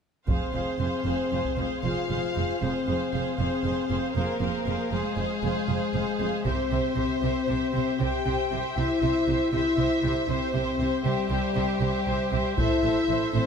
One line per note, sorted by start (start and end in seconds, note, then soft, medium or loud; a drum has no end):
0.27 0.37 F1 soft
0.27 0.36 F2 soft
0.27 1.80 C4 medium
0.27 0.53 G#4 soft
0.27 0.53 C5 soft
0.27 1.80 C5 medium
0.27 0.53 C5 soft
0.27 0.54 F5 soft
0.27 taiko soft
0.54 0.63 F1 soft
0.54 0.62 F2 soft
0.54 0.79 G#4 soft
0.54 0.80 C5 soft
0.54 0.79 C5 soft
0.54 0.79 F5 soft
0.79 0.87 F1 soft
0.79 0.87 F2 soft
0.79 1.05 G#4 soft
0.79 1.05 C5 soft
0.79 1.05 F5 soft
1.06 1.14 F1 soft
1.06 1.14 F2 soft
1.06 1.31 G#4 soft
1.06 1.30 C5 soft
1.06 1.31 C5 soft
1.06 1.31 F5 soft
1.31 1.40 F1 soft
1.31 1.40 F2 soft
1.31 1.57 G#4 soft
1.31 1.57 C5 soft
1.31 1.57 F5 soft
1.45 taiko soft
1.58 1.66 F1 soft
1.58 1.66 F2 soft
1.58 1.83 G#4 soft
1.58 1.84 C5 soft
1.58 1.83 C5 soft
1.58 1.84 F5 soft
1.84 1.92 F1 soft
1.84 1.92 F2 soft
1.84 2.62 F4 medium
1.84 2.07 G#4 soft
1.84 2.07 C5 soft
1.84 2.10 C5 soft
1.84 2.61 F5 medium
1.84 2.10 F5 soft
2.08 2.19 F1 soft
2.08 2.18 F2 soft
2.08 2.33 G#4 soft
2.08 2.33 C5 soft
2.08 2.36 C5 soft
2.08 2.36 F5 soft
2.34 2.44 F1 soft
2.34 2.44 F2 soft
2.34 2.60 G#4 soft
2.34 2.60 C5 soft
2.34 2.61 C5 soft
2.34 2.62 F5 soft
2.61 2.71 F1 soft
2.61 2.70 F2 soft
2.61 3.37 C4 medium
2.61 2.85 G#4 soft
2.61 2.85 C5 soft
2.61 3.37 C5 soft
2.61 2.87 C5 soft
2.61 2.86 F5 soft
2.86 2.96 F1 soft
2.86 2.96 F2 soft
2.86 3.12 G#4 soft
2.86 3.12 C5 soft
2.86 3.11 C5 soft
2.86 3.12 F5 soft
3.12 3.22 F1 soft
3.12 3.22 F2 soft
3.12 3.38 G#4 soft
3.12 3.37 C5 soft
3.12 3.38 C5 soft
3.12 3.36 F5 soft
3.37 3.47 F1 soft
3.37 3.47 F2 soft
3.37 4.14 C4 medium
3.37 3.64 G#4 soft
3.37 3.62 C5 soft
3.37 4.14 C5 medium
3.37 3.64 C5 soft
3.37 3.62 F5 soft
3.63 3.73 F1 soft
3.63 3.73 F2 soft
3.63 3.88 G#4 soft
3.63 3.88 C5 soft
3.63 3.88 F5 soft
3.89 3.98 F1 soft
3.89 3.98 F2 soft
3.89 4.15 G#4 soft
3.89 4.14 C5 soft
3.89 4.14 F5 soft
4.15 4.23 F1 soft
4.15 4.24 F2 soft
4.15 4.91 A#3 medium
4.15 4.39 G#4 soft
4.15 4.92 A#4 medium
4.15 4.39 C5 soft
4.15 4.40 C5 soft
4.15 4.40 F5 soft
4.40 4.49 F1 soft
4.40 4.49 F2 soft
4.40 4.66 G#4 soft
4.40 4.66 C5 soft
4.40 4.66 F5 soft
4.66 4.74 F1 soft
4.66 4.75 F2 soft
4.66 4.91 G#4 soft
4.66 4.92 C5 soft
4.66 4.91 C5 soft
4.66 4.91 F5 soft
4.92 5.00 F1 soft
4.92 5.00 F2 soft
4.92 6.46 G#3 medium
4.92 6.45 G#4 medium
4.92 5.16 G#4 soft
4.92 5.16 C5 soft
4.92 5.17 C5 soft
4.92 5.17 F5 soft
5.17 5.25 F1 soft
5.17 5.25 F2 soft
5.17 5.42 G#4 soft
5.17 5.42 C5 soft
5.17 5.42 F5 soft
5.43 5.51 F1 soft
5.43 5.51 F2 soft
5.43 5.67 G#4 soft
5.43 5.67 C5 soft
5.43 5.68 C5 soft
5.43 5.67 F5 soft
5.68 5.77 F1 soft
5.68 5.77 F2 soft
5.68 5.93 G#4 soft
5.68 5.93 C5 soft
5.68 5.94 C5 soft
5.68 5.93 F5 soft
5.94 6.02 F1 soft
5.94 6.02 F2 soft
5.94 6.18 G#4 soft
5.94 6.18 C5 soft
5.94 6.18 F5 soft
6.19 6.28 F1 soft
6.19 6.28 F2 soft
6.19 6.44 G#4 soft
6.19 6.44 C5 soft
6.19 6.44 F5 soft
6.45 6.53 C2 soft
6.45 6.53 C3 soft
6.45 8.01 C4 medium
6.45 6.69 G4 soft
6.45 6.69 C5 soft
6.45 7.97 C5 medium
6.45 6.69 E5 soft
6.45 taiko soft
6.70 6.80 C2 soft
6.70 6.79 C3 soft
6.70 6.94 G4 soft
6.70 6.93 C5 soft
6.70 6.95 C5 soft
6.70 6.95 E5 soft
6.95 7.05 C2 soft
6.95 7.04 C3 soft
6.95 7.20 G4 soft
6.95 7.20 C5 soft
6.95 7.21 C5 soft
6.95 7.21 E5 soft
7.21 7.31 C2 soft
7.21 7.30 C3 soft
7.21 7.46 G4 soft
7.21 7.47 C5 soft
7.21 7.47 E5 soft
7.48 7.57 C2 soft
7.48 7.56 C3 soft
7.48 7.72 G4 soft
7.48 7.72 C5 soft
7.48 7.73 C5 soft
7.48 7.73 E5 soft
7.73 7.84 C2 soft
7.73 7.82 C3 soft
7.73 7.98 G4 soft
7.73 7.98 C5 soft
7.73 8.00 C5 soft
7.73 8.00 E5 soft
7.99 8.10 C2 medium
7.99 8.08 C3 soft
7.99 8.24 G4 soft
7.99 8.60 G4 medium
7.99 8.24 C5 soft
7.99 8.25 C5 soft
7.99 8.25 E5 soft
7.99 8.77 G5 medium
8.25 8.34 C2 soft
8.25 8.34 C3 soft
8.25 8.50 G4 soft
8.25 8.50 C5 soft
8.25 8.51 C5 soft
8.25 8.51 E5 soft
8.51 8.59 C2 soft
8.51 8.59 C3 soft
8.51 8.75 G4 soft
8.51 8.75 C5 soft
8.51 8.77 C5 soft
8.51 8.77 E5 soft
8.76 8.85 C2 medium
8.76 8.85 C3 soft
8.76 9.51 E4 medium
8.76 9.00 G4 soft
8.76 9.00 C5 soft
8.76 9.02 C5 soft
8.76 9.52 E5 medium
8.76 9.02 E5 soft
9.01 9.09 C2 soft
9.01 9.10 C3 soft
9.01 9.27 G4 soft
9.01 9.27 C5 soft
9.01 9.28 C5 soft
9.01 9.27 E5 soft
9.27 9.35 C2 medium
9.27 9.36 C3 soft
9.27 9.52 G4 soft
9.27 9.52 C5 soft
9.27 9.53 C5 soft
9.27 9.53 E5 soft
9.52 9.61 C2 medium
9.52 9.60 C3 soft
9.52 10.28 E4 medium
9.52 9.77 G4 soft
9.52 9.76 C5 soft
9.52 9.77 C5 soft
9.52 10.27 E5 medium
9.52 9.78 E5 soft
9.77 9.86 C2 soft
9.77 9.86 C3 soft
9.77 10.01 G4 soft
9.77 10.02 C5 soft
9.77 10.03 C5 soft
9.77 10.03 E5 soft
10.03 10.11 C2 soft
10.03 10.11 C3 medium
10.03 10.27 G4 soft
10.03 10.28 C5 soft
10.03 10.29 C5 soft
10.03 10.29 E5 soft
10.28 10.36 C2 medium
10.28 10.37 C3 medium
10.28 11.05 C4 medium
10.28 10.53 G4 soft
10.28 10.53 C5 medium
10.28 11.05 C5 medium
10.28 10.54 C5 soft
10.28 10.54 E5 soft
10.54 10.62 C2 medium
10.54 10.62 C3 medium
10.54 10.78 G4 soft
10.54 10.78 C5 soft
10.54 10.80 C5 soft
10.54 10.80 E5 soft
10.79 10.88 C2 medium
10.79 10.88 C3 medium
10.79 11.04 G4 soft
10.79 11.04 C5 soft
10.79 11.04 E5 soft
11.05 11.13 C2 medium
11.05 11.13 C3 medium
11.05 12.59 G3 medium
11.05 12.58 G4 medium
11.05 11.28 G4 medium
11.05 11.29 C5 medium
11.05 11.30 C5 soft
11.05 11.30 E5 soft
11.29 11.38 C2 medium
11.29 11.38 C3 medium
11.29 11.54 G4 soft
11.29 11.54 C5 soft
11.29 11.55 C5 soft
11.29 11.55 E5 soft
11.55 11.63 C2 medium
11.55 11.64 C3 medium
11.55 11.79 G4 soft
11.55 11.78 C5 soft
11.55 11.81 C5 soft
11.55 11.81 E5 soft
11.79 11.88 C2 medium
11.79 11.89 C3 medium
11.79 12.05 G4 soft
11.79 12.05 C5 medium
11.79 12.06 C5 soft
11.79 12.06 E5 soft
12.06 12.14 C2 medium
12.06 12.14 C3 medium
12.06 12.31 G4 medium
12.06 12.31 C5 medium
12.06 12.32 C5 soft
12.06 12.31 E5 soft
12.32 12.40 C2 medium
12.32 12.40 C3 medium
12.32 12.58 G4 soft
12.32 12.57 C5 soft
12.32 12.58 C5 soft
12.32 12.58 E5 soft
12.57 12.67 A1 medium
12.57 12.66 A2 medium
12.57 13.33 E4 medium
12.57 12.82 A4 medium
12.57 12.83 C5 medium
12.57 12.83 C5 soft
12.57 13.33 E5 medium
12.57 12.83 E5 soft
12.57 taiko medium
12.83 12.92 A1 medium
12.83 12.91 A2 medium
12.83 13.08 A4 soft
12.83 13.09 C5 soft
12.83 13.08 C5 soft
12.83 13.08 E5 soft
13.08 13.17 A1 medium
13.08 13.16 A2 medium
13.08 13.32 A4 soft
13.08 13.33 C5 soft
13.08 13.33 E5 soft
13.33 13.43 A1 medium
13.33 13.42 A2 medium
13.33 13.46 C4 medium
13.33 13.46 A4 medium
13.33 13.46 C5 medium
13.33 13.46 C5 soft
13.33 13.46 C5 medium
13.33 13.46 E5 soft